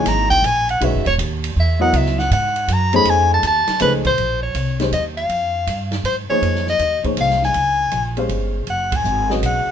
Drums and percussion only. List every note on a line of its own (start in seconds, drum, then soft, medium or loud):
0.06 snare soft
0.06 hi-hat pedal medium
0.06 ride medium
0.31 kick medium
0.31 ride soft
0.44 hi-hat pedal medium
0.44 ride medium
0.69 ride soft
0.81 ride medium
1.06 kick soft
1.06 ride soft
1.19 hi-hat pedal medium
1.19 ride medium
1.44 ride medium
1.94 ride medium
2.06 snare soft
2.18 snare soft
2.31 hi-hat pedal medium
2.31 ride medium
2.56 ride medium
2.68 hi-hat pedal medium
2.68 ride medium
2.93 ride soft
3.05 ride medium
3.43 hi-hat pedal medium
3.43 ride medium
3.67 snare soft
3.67 ride medium
3.80 hi-hat pedal medium
3.80 ride medium
4.05 kick medium
4.05 ride medium
4.18 ride medium
4.55 hi-hat pedal medium
4.55 ride medium
4.80 snare soft
4.80 ride soft
4.93 hi-hat pedal medium
4.93 ride medium
5.17 ride soft
5.29 ride medium
5.67 hi-hat pedal soft
5.67 ride medium
5.92 snare soft
5.92 ride soft
6.05 ride medium
6.43 ride medium
6.55 snare soft
6.67 snare soft
6.79 hi-hat pedal soft
6.79 ride medium
7.04 kick soft
7.04 ride soft
7.17 hi-hat pedal soft
7.17 ride medium
7.30 snare soft
7.42 snare soft
7.54 ride medium
7.91 hi-hat pedal soft
7.91 ride medium
8.17 ride soft
8.29 ride medium
8.67 ride medium
8.92 kick medium
8.92 ride medium
9.05 hi-hat pedal medium
9.30 snare soft
9.43 hi-hat pedal medium
9.43 ride medium